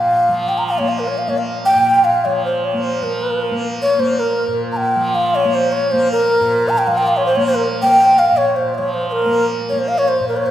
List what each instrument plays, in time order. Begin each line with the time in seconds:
Already playing: tanpura A#2 F3 A#3, bansuri F5
0.29 tanpura F3
0.48 bansuri G5
0.58 bansuri A#5
0.67 bansuri F5
0.78 tanpura A#3, bansuri C#5
0.89 bansuri F5
0.99 bansuri A#4
1.08 bansuri C#5
1.18 bansuri F5
1.28 tanpura A#3, bansuri C#5
1.38 bansuri F5
1.65 bansuri G5
1.75 tanpura A#2
2.04 bansuri F5
2.25 tanpura F3, bansuri C#5
2.45 bansuri C5
2.64 bansuri C#5
2.74 tanpura A#3
2.83 bansuri C5
3.02 tanpura F3, bansuri A#4
3.51 tanpura A#3
3.82 bansuri C#5
3.98 tanpura A#3, bansuri C5
4.20 bansuri A#4
4.48 tanpura A#2
4.72 bansuri A#5
4.77 bansuri G5
4.96 tanpura F3
5.15 bansuri F5
5.35 bansuri C#5
5.45 tanpura A#3
5.54 bansuri C5
5.72 bansuri C#5
5.92 tanpura A#3, bansuri C5
6.12 bansuri A#4
6.41 tanpura A#2
6.69 bansuri A#5
6.78 bansuri G5
6.87 tanpura F3, bansuri F5
6.98 bansuri G5
7.08 bansuri F5
7.17 bansuri C#5
7.26 bansuri C5
7.36 tanpura A#3, bansuri C#5
7.46 bansuri C5
7.55 bansuri A#4
7.82 tanpura A#3, bansuri G5
8.19 bansuri F5
8.32 tanpura A#2
8.37 bansuri C#5
8.56 bansuri C5
8.75 tanpura F3, bansuri C#5 F5
8.94 bansuri C5
9.09 bansuri A#4 C5
9.26 tanpura A#3
9.69 tanpura A#3, bansuri C#5
9.79 bansuri C5
9.88 bansuri F5
9.98 bansuri C#5
10.08 bansuri C5
10.20 tanpura A#2
10.28 bansuri A#4
10.37 bansuri C#5
10.46 bansuri C5